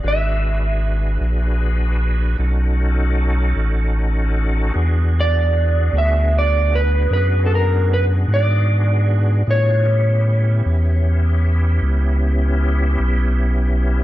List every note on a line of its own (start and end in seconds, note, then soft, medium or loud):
0.03 1.18 G#1 medium
0.03 2.37 D4 medium
0.03 2.37 F#4 medium
0.03 2.37 G#4 medium
0.03 2.37 B4 medium
0.08 2.38 E5 medium
1.20 2.35 A#1 medium
2.38 3.54 B1 medium
2.38 4.73 C#4 medium
2.38 4.73 D#4 medium
2.38 4.73 F#4 medium
2.38 4.73 A4 medium
3.56 4.71 A1 medium
4.74 5.90 E2 medium
4.74 9.43 B3 medium
4.74 9.43 D4 medium
4.74 9.43 F#4 medium
4.74 9.43 G#4 medium
5.20 5.99 D5 medium
5.93 7.08 D2 medium
5.98 6.36 E5 medium
6.39 6.76 D5 medium
6.75 7.12 B4 medium
7.10 8.26 F#2 medium
7.10 7.46 B4 medium
7.46 7.52 A4 medium
7.55 7.93 A#4 medium
7.94 8.04 B4 medium
8.28 9.43 G#2 medium
8.34 9.50 D5 medium
9.47 10.62 A2 medium
9.47 9.85 B3 medium
9.47 9.87 D4 medium
9.47 9.87 F4 medium
9.47 9.87 G#4 medium
9.47 11.81 C#5 medium
9.85 14.04 B3 medium
9.85 14.04 C#4 medium
9.85 14.04 E4 medium
9.85 14.04 G4 medium
10.66 11.80 E2 medium
11.82 12.97 C#2 medium
12.99 14.04 B1 medium